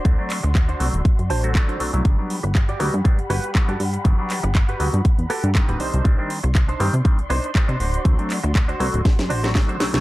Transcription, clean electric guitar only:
0.00 0.30 D4 medium
0.00 0.30 F#4 medium
0.00 0.30 C5 medium
0.43 muted clean electric guitar stroke loud
0.55 muted clean electric guitar stroke soft
0.68 0.87 D4 medium
0.68 0.87 F#4 medium
0.68 0.87 C5 medium
1.05 muted clean electric guitar stroke soft
1.30 1.49 D4 medium
1.30 1.49 F#4 medium
1.30 1.50 C5 loud
1.30 1.53 A5 medium
1.55 2.02 D5 medium
1.68 1.80 D4 medium
1.68 1.80 F#4 medium
1.68 1.80 C5 medium
1.94 muted clean electric guitar stroke soft
2.43 muted clean electric guitar stroke loud
2.55 muted clean electric guitar stroke soft
2.69 2.87 F#4 medium
2.69 2.87 G4 medium
2.69 2.87 D5 medium
3.05 muted clean electric guitar stroke soft
3.30 3.49 F#4 loud
3.30 3.49 G4 medium
3.30 3.50 B4 loud
3.68 3.80 F#4 medium
3.68 3.80 G4 medium
3.68 3.80 A4 loud
3.94 muted clean electric guitar stroke soft
4.43 muted clean electric guitar stroke loud
4.69 4.87 F#4 medium
4.69 4.87 G4 medium
4.69 4.87 B4 medium
5.05 muted clean electric guitar stroke soft
5.30 5.49 F#4 loud
5.30 5.49 G4 medium
5.30 5.50 A4 loud
5.69 5.80 F#4 medium
5.69 5.80 G4 medium
5.69 5.80 B4 medium
5.80 6.30 D4 medium
5.80 6.30 D#4 medium
5.80 6.30 C5 loud
6.44 muted clean electric guitar stroke loud
6.55 muted clean electric guitar stroke soft
6.68 6.87 D4 medium
6.68 6.87 D#4 medium
6.68 6.87 C5 medium
7.05 muted clean electric guitar stroke soft
7.30 7.49 D4 loud
7.30 7.49 D#4 medium
7.30 7.50 C5 loud
7.68 7.79 D4 medium
7.68 7.80 D#4 medium
7.68 7.79 C5 medium
7.80 8.30 D4 medium
7.80 8.30 F#4 medium
7.80 8.30 C5 loud
8.44 muted clean electric guitar stroke loud
8.55 muted clean electric guitar stroke soft
8.68 8.87 D4 medium
8.68 8.87 F#4 medium
8.68 8.87 C5 medium
9.05 muted clean electric guitar stroke soft
9.30 9.49 D4 loud
9.30 9.49 F#4 medium
9.30 9.50 C5 loud
9.68 9.80 D4 medium
9.68 9.80 F#4 medium
9.68 9.80 C5 medium
9.93 muted clean electric guitar stroke soft

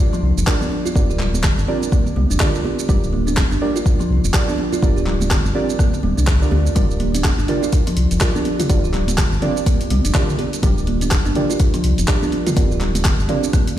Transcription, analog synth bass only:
0.23 0.32 C2 medium
0.37 0.44 F1 medium
0.95 1.05 G1 loud
1.10 1.51 D1 loud
1.58 1.65 G1 loud
2.16 2.26 C2 medium
2.31 2.37 F1 medium
2.89 2.99 G1 loud
3.03 3.44 D1 loud
3.52 3.58 G1 loud
4.10 4.20 C2 medium
4.24 4.31 F1 medium
4.82 4.92 G1 loud
4.97 5.38 D1 loud
5.45 5.52 G1 loud
6.03 6.13 D1 loud
6.18 6.47 C2 medium
6.52 6.70 D2 loud
6.76 6.86 G1 loud
6.90 7.31 D1 loud
7.38 7.45 G1 loud
7.97 8.06 C2 medium
8.11 8.18 F1 medium
8.70 8.79 G1 loud
8.84 9.25 D1 loud
9.32 9.39 G1 loud
9.90 10.00 C2 medium
10.05 10.11 F1 medium
10.63 10.73 G1 loud
10.77 11.18 D1 loud
11.26 11.32 G1 loud
11.84 11.94 C2 medium
11.98 12.05 F1 medium
12.57 12.66 G1 loud
12.71 13.12 D1 loud
13.19 13.26 G1 loud

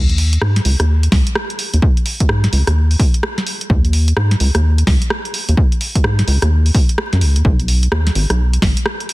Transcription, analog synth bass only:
0.00 0.38 D#2 medium
0.42 0.60 G#2 medium
0.65 0.76 C#2 loud
0.80 1.08 D#2 medium
1.12 1.23 C#2 medium
1.74 1.80 D#2 medium
2.29 2.48 G#2 medium
2.53 2.63 C#2 medium
2.67 2.96 D#2 medium
3.70 4.13 D#2 loud
4.17 4.35 G#2 medium
4.40 4.51 C#2 medium
4.55 4.83 D#2 medium
4.87 4.98 C#2 medium
5.49 5.55 D#2 medium
6.04 6.23 G#2 medium
6.28 6.38 C#2 medium
6.42 6.71 D#2 medium
7.13 7.23 F#2 medium
7.22 7.38 C#2 medium
7.36 7.42 D#2 medium
7.45 7.88 B1 medium
7.92 8.10 D#2 medium
8.15 8.26 G#1 medium
8.30 8.58 B1 medium
8.62 8.73 G#1 medium

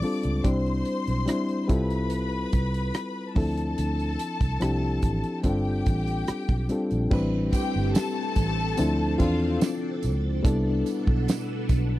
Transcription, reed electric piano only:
0.00 0.02 G3 medium
0.00 0.29 G3 medium
0.00 0.03 C4 medium
0.00 0.30 C4 medium
0.00 0.03 D4 medium
0.00 0.30 D4 medium
0.00 0.04 F4 medium
0.00 0.30 F4 medium
0.00 0.05 A4 medium
0.05 0.30 A4 medium
0.44 0.98 G3 medium
0.44 0.98 C4 medium
0.44 0.98 D4 medium
0.44 0.98 E4 medium
0.44 0.99 C5 medium
1.26 1.67 G3 medium
1.26 1.68 C4 medium
1.26 1.70 D4 medium
1.26 1.69 E4 medium
1.26 1.70 C5 medium
1.68 3.02 G3 medium
1.68 3.03 C4 medium
1.68 3.03 E4 medium
1.68 3.03 F4 medium
1.68 3.04 A4 medium
3.35 4.36 F3 medium
3.35 4.36 C4 medium
3.35 4.36 D4 medium
3.35 4.37 E4 medium
3.35 4.37 A4 medium
4.60 5.44 F3 medium
4.60 5.42 C4 medium
4.60 5.43 D4 medium
4.60 5.45 E4 medium
4.60 5.45 G4 medium
5.43 6.44 G3 medium
5.43 6.44 C4 medium
5.43 6.45 D4 medium
5.43 6.45 F4 medium
5.43 6.45 A4 medium
6.69 6.96 G3 medium
6.69 6.96 C4 medium
6.69 6.97 D4 medium
6.69 6.97 F4 medium
6.69 6.97 A4 medium
7.11 8.17 G3 medium
7.11 8.18 C4 medium
7.11 8.18 D4 medium
7.11 8.18 E4 medium
7.11 8.19 B4 loud
8.77 9.11 F3 medium
8.77 9.11 C4 medium
8.77 9.12 D4 medium
8.77 9.12 E4 medium
8.77 9.12 A4 loud
9.18 9.99 C4 medium
9.18 9.99 D4 medium
9.18 9.99 F4 medium
9.18 10.00 A4 medium
10.43 11.50 G3 medium
10.43 11.50 B3 medium
10.43 11.51 D4 medium
10.43 11.51 E4 medium
10.43 11.51 A4 medium

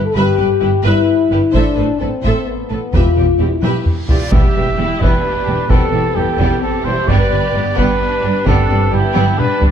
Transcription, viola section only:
0.16 0.37 B4 medium
0.38 0.46 B4 soft
0.60 0.68 B4 soft
0.84 1.06 B4 medium
1.30 1.38 B4 soft
1.54 1.76 A4 medium
1.78 1.86 A4 soft
2.02 2.10 A4 soft
2.25 2.46 A4 medium
2.72 2.80 A4 soft
2.94 3.15 G4 soft
3.17 3.25 G4 soft
3.41 3.49 G4 soft
3.62 3.84 G4 medium
4.10 4.18 G4 soft
4.33 4.75 G4 medium
4.79 5.25 E4 medium
5.25 5.70 G4 soft
5.71 6.61 A4 medium
6.62 7.08 G4 medium
7.09 7.55 B4 medium
7.55 8.01 B3 medium
8.01 8.46 D4 medium
8.47 8.93 D4 medium
8.92 9.38 E4 medium
9.39 9.71 D4 medium

